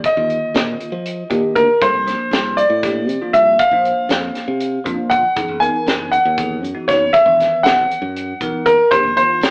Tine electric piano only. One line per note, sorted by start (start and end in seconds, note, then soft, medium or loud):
0.17 0.90 D3 medium
0.17 0.90 D#3 medium
0.17 0.90 A#3 medium
0.17 0.90 F4 medium
1.30 1.67 D#3 medium
1.30 1.67 A#3 medium
1.30 1.67 D4 medium
1.30 1.67 G4 loud
1.82 2.00 F3 medium
1.82 2.00 A#3 medium
1.82 2.00 D4 medium
1.82 2.00 A4 medium
2.07 2.62 F3 medium
2.07 2.62 A#3 medium
2.07 2.62 D4 medium
2.07 2.62 C5 medium
2.83 3.11 F3 medium
2.83 3.11 A#3 medium
2.83 3.11 D4 medium
2.83 3.11 G4 medium
3.22 3.58 F3 medium
3.22 3.58 A#3 medium
3.22 3.58 D4 medium
3.22 3.58 F4 medium
3.72 4.45 F3 medium
3.72 4.45 A#3 medium
3.72 4.46 D4 medium
3.72 4.45 C5 medium
4.85 5.22 F3 medium
4.85 5.22 A#3 medium
4.85 5.22 D4 medium
4.85 5.22 F4 loud
5.36 5.54 E3 medium
5.36 5.54 B3 medium
5.36 5.54 D#4 medium
5.36 5.55 G#4 medium
5.61 6.16 E3 medium
5.61 6.16 B3 medium
5.61 6.17 D#4 medium
5.61 6.17 A#4 medium
6.38 6.65 E3 medium
6.38 6.66 B3 medium
6.38 6.65 D#4 medium
6.38 6.66 G#4 medium
6.74 7.12 E3 medium
6.74 7.12 B3 medium
6.74 7.12 D#4 medium
6.74 7.12 F#4 medium
7.26 8.00 D#3 medium
7.26 7.99 E3 medium
7.26 8.00 B3 medium
7.26 7.99 B4 medium
8.41 8.78 E3 medium
8.41 8.78 B3 medium
8.41 8.78 D#4 medium
8.41 8.78 A#4 loud
8.92 9.10 D#3 medium
8.92 9.10 A#3 medium
8.92 9.10 D4 medium
8.92 9.10 G4 medium
9.16 9.51 D#3 medium
9.16 9.51 A#3 medium
9.16 9.51 D4 medium
9.16 9.51 F4 medium